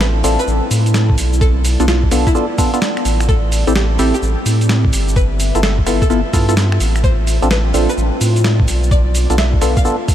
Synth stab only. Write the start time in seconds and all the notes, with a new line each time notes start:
0.24 C4 D4 F4 A4
1.80 B3 D4 F4 A4
2.11 B3 D4 F4 A4
2.35 B3 D4 F4 A4
2.58 B3 D4 F4 A4
2.74 B3 D4 F4 A4
3.67 C4 E4 G4 A4
3.99 C4 E4 G4 A4
5.55 B3 E4 F4 A4
5.87 B3 E4 F4 A4
6.10 B3 E4 F4 A4
6.33 B3 E4 F4 A4
6.49 B3 E4 F4 A4
7.42 C4 D4 F4 A4
7.74 C4 D4 F4 A4
9.30 B3 D4 F4 A4
9.62 B3 D4 F4 A4
9.85 B3 D4 F4 A4